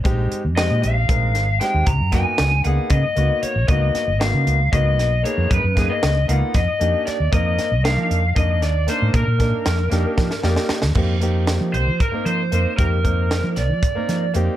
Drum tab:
CC |--------------|--------------|--------------|--------------|
HH |x-x-x-x-x-x-x-|x-x-x-x-x-x-x-|x-x-x-x-x-x-x-|x-x-x-x-x-x-x-|
SD |----o-----o-o-|--o-o---------|--o-o-----o---|--o-o---o---o-|
BD |o-------o-----|o-o-----o-----|o-------o-----|o-o-----o-----|

CC |--------------|--------------|x-------------|--------------|
HH |x-x-x-x-x-x-x-|x-x-x-x-------|--x-x-x-x-x-x-|x-x-x-x-x-x-x-|
SD |--o-o-----o-o-|--o-o-o-oooooo|----o---------|----o-o---o---|
BD |o-------o-----|o-o-----o-----|o-------o-----|o-o-----o-----|